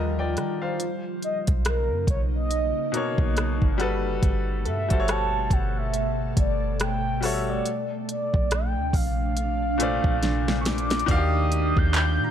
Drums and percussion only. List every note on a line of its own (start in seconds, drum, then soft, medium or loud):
0.37 cross-stick medium
0.37 closed hi-hat medium
0.80 closed hi-hat medium
1.22 closed hi-hat soft
1.47 kick medium
1.47 closed hi-hat medium
1.65 cross-stick loud
1.65 closed hi-hat medium
2.07 kick loud
2.07 closed hi-hat medium
2.51 closed hi-hat medium
2.94 closed hi-hat medium
3.18 kick medium
3.37 cross-stick loud
3.37 closed hi-hat medium
3.62 kick loud
3.80 cross-stick medium
3.80 closed hi-hat medium
4.23 kick loud
4.23 closed hi-hat medium
4.65 closed hi-hat soft
4.90 kick medium
4.90 closed hi-hat medium
5.08 cross-stick loud
5.08 closed hi-hat medium
5.50 kick loud
5.50 closed hi-hat medium
5.94 closed hi-hat medium
6.37 kick loud
6.37 closed hi-hat medium
6.80 cross-stick loud
6.80 closed hi-hat medium
7.23 cross-stick medium
7.23 open hi-hat medium
7.66 closed hi-hat medium
8.09 closed hi-hat medium
8.34 kick medium
8.51 cross-stick loud
8.51 closed hi-hat medium
8.93 kick loud
8.93 open hi-hat soft
9.37 closed hi-hat medium
9.80 closed hi-hat medium
10.04 kick medium
10.23 snare medium
10.23 closed hi-hat medium
10.48 snare medium
10.65 snare medium
10.65 closed hi-hat medium
10.65 open hi-hat medium
10.78 closed hi-hat soft
10.90 snare medium
10.90 closed hi-hat medium
10.99 closed hi-hat medium
11.08 kick loud
11.08 closed hi-hat medium
11.52 closed hi-hat medium
11.77 kick medium
11.94 clap loud
11.94 closed hi-hat medium